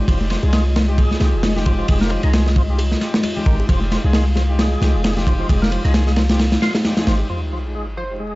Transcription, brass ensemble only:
0.08 G#3 D#4 F4 G4
0.43 G#3 D#4 F4 G#4
0.88 G#3 D#4 F4 G4
1.21 G#3 D#4 F4 G4
1.56 G#3 D#4 F4 G4
1.88 G#3 D#4 F4 G4
2.24 G#3 D#4 F4 G#4
2.69 G#3 D#4 F4 G4
3.01 G#3 D#4 F4 G4
3.36 G#3 D#4 F4 G4
3.69 G#3 D#4 F4 G4
4.04 G#3 D#4 F4 G#4
4.49 G#3 D#4 F4 G4
4.82 G#3 D#4 F4 G4
5.17 G#3 D#4 F4 G4
5.49 G#3 D#4 F4 G4
5.85 G#3 D#4 F4 G#4
6.29 G#3 D#4 F4 G4
6.85 G#3 D#4 F4 G4
6.97 G#3 D#4 F4 G#4
7.07 G#3 D#4 F4 G4
7.30 G#3 D#4 F4 G4
7.65 G#3 D#4 F4 G#4
8.10 G#3 D#4 F4 G4

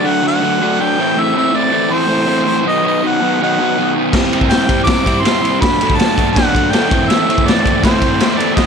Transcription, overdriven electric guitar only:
0.03 D3 F#3 A3 D4
0.22 D3 F#3 A3 D4
0.41 D3 F#3 A3 D4
0.60 D3 F#3 A3 D4
0.79 D3 F#3 A3 D4
0.98 A2 E3 A3 C4 E4
1.16 A2 E3 A3 C4 E4
1.35 A2 E3 A3 C4 E4
1.51 A2 E3 A3 C4 E4
1.70 A2 E3 A3 C4 E4
1.89 A2 E3 A3 C4
1.93 E4
2.07 A2 E3 A3 C4 E4
2.26 A2 E3 A3 C4 E4
2.44 A2 E3 A3 C4 E4
2.64 B2 D#3 F#3 B3 D#4
2.83 B2 D#3 F#3 B3 D#4
3.02 B2 D#3 F#3 B3 D#4
3.20 B2 D#3 F#3 B3 D#4
3.39 B2 D#3 F#3 B3 D#4
3.58 B2 D#3 F#3 B3 D#4
3.76 B2 D#3 F#3 B3 D#4
3.95 B2 D#3 F#3 B3 D#4
4.13 C3 G3 C4 E4
4.32 C3 G3 C4 E4
4.50 C3 G3 C4 E4
4.67 C3 G3 C4 E4
4.86 C3 G3 C4 E4
5.04 C3 G3 C4 E4
5.23 C3 G3 C4 E4
5.41 C3 G3 C4 E4
5.60 D3 F#3 A3 D4
5.80 D3 F#3 A3 D4
5.97 D3 F#3 A3 D4
6.17 D3 F#3 A3 D4
6.36 D3 F#3 A3 D4
6.54 D3 F#3 A3 D4
6.72 D3 F#3 A3 D4
6.88 A2 E3 A3 C4 E4
7.08 A2 E3 A3 C4 E4
7.27 A2 E3 A3 C4 E4
7.46 A2 E3 A3 C4 E4
7.61 A2 E3 A3 C4 E4
7.82 A2 E3 A3 C4 E4
8.00 A2 E3 A3 C4 E4
8.18 A2 E3 A3 C4
8.22 E4
8.37 A2 E3 A3 C4 E4
8.56 B2 D#3 F#3 B3
8.60 D#4

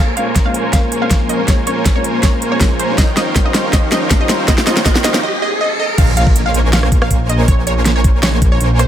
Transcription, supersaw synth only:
0.00 A#3 A#4 C5 C#5 G#5
1.11 A#3 A#4 C5 C#5 G#5
1.48 A#3 A#4 C5 C#5 G#5
2.61 A#3 A#4 C5 C#5 G#5
2.98 D#4 A#4 C5 C#5 F5 G5
3.73 D#4 A#4 C5 C#5 F5 G5
4.48 D#4 A#4 C5 C#5 F5 G5
4.86 D#4 A#4 C5 C#5 F5 G5
5.98 A#3 A#4 C5 C#5 G#5
7.11 A#3 A#4 C5 C#5 G#5
7.48 A#3 A#4 C5 C#5 G#5
8.61 A#3 A#4 C5 C#5 G#5

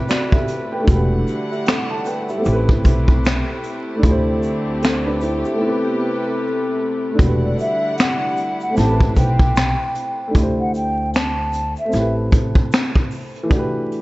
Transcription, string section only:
Already playing: C3 A3 E4 G4 B4
0.88 D3 G3 A3 F#5
2.45 C4 G4 B4
4.03 D3 C4 G4
5.61 C3 B4
7.19 D3 G3 E4 F#5
8.77 C4 G4 B4

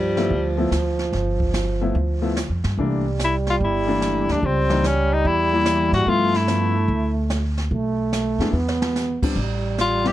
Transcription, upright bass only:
Already playing: G2
0.30 D2
0.71 D2
1.12 G1
1.95 D2
2.49 F2
2.64 G2
2.77 C2
3.60 G1
4.29 D2
4.43 C#2
5.25 E2
5.92 G#2
6.06 G2
6.88 D2
7.71 B1
8.39 F2
8.53 E2
9.22 muted upright bass stroke
9.36 A1

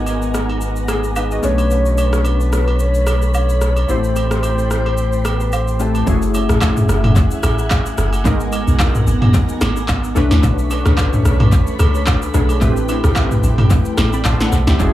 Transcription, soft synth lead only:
1.44 C#5
2.26 B4
2.80 C#5
3.35 C#5
3.89 C5
5.26 B4
5.53 C5
5.81 A5

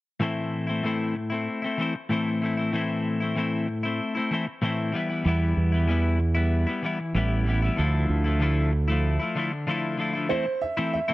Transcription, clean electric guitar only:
0.20 A2 E3 A3 C4 E4
0.67 C4 E4
0.71 A3
0.83 A2 E3 A3 C4 E4
1.16 muted clean electric guitar stroke
1.30 A3 C4 E4
1.62 A3 C4 E4
1.78 E3 A3 C4
1.82 E4
1.95 muted clean electric guitar stroke
2.09 A2 E3 A3 C4 E4
2.42 E3 A3 C4 E4
2.57 A3 C4 E4
2.72 A2 E3 A3 C4 E4
3.20 A3 C4 E4
3.35 A2 E3 A3 C4 E4
3.68 muted clean electric guitar stroke
3.83 A3 C4 E4
4.15 A3 C4 E4
4.31 E3 A3 C4 E4
4.47 muted clean electric guitar stroke
4.62 A2 E3 A3 C4 E4
4.92 E3 G3 B3 E4
5.09 G3 B3 E4
5.25 E3 G3 B3 E4
5.72 G3 B3 E4
5.88 E3 G3 B3 E4
6.20 muted clean electric guitar stroke
6.35 G3 B3 E4
6.67 G3 B3 E4
6.83 E3 G3 B3 E4
7.00 muted clean electric guitar stroke
7.15 E3 G3 B3 E4
7.46 E3 G3 B3 E4
7.62 G3 B3 E4
7.77 D3 F3 A3 E4
8.24 F3 A3 E4
8.40 D3 F3 A3 E4
8.72 muted clean electric guitar stroke
8.88 F3 A3 E4
9.19 F3 A3 E4
9.35 D3 F3 A3 E4
9.53 muted clean electric guitar stroke
9.67 D3 F3 A3 E4
9.97 D3 F3 A3 E4
10.13 F3 A3 E4
10.30 E3 A3 C4 E4
10.46 muted clean electric guitar stroke
10.77 E3 A3 C4 E4
11.08 E3 A3 C4 E4

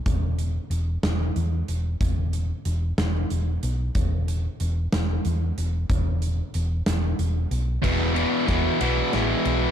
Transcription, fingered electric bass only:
0.06 E1
0.70 E1
1.03 E1
1.36 E2
1.69 E1
2.00 E1
2.66 E1
2.98 E1
3.31 E1
3.63 B1
3.95 E1
4.61 E1
4.93 E1
5.25 E2
5.58 E1
5.90 E1
6.55 E1
6.87 E1
7.19 E1
7.51 B1
7.84 E1
8.49 E1
8.81 B1
9.14 A1
9.46 B1

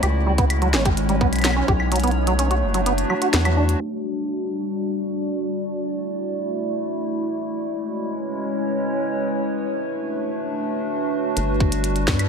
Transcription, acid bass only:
0.03 G4
0.26 G3
0.38 B3
0.62 F#3
0.74 C#4
0.86 G4
1.09 G3
1.21 B3
1.45 F#3
1.56 C#4
1.68 G4
1.92 F#3
2.04 B3
2.27 F#3
2.39 C#4
2.51 F#4
2.74 F#3
2.86 B3
3.10 F#3
3.22 F#4
3.33 B3
3.45 F#3
3.57 D4

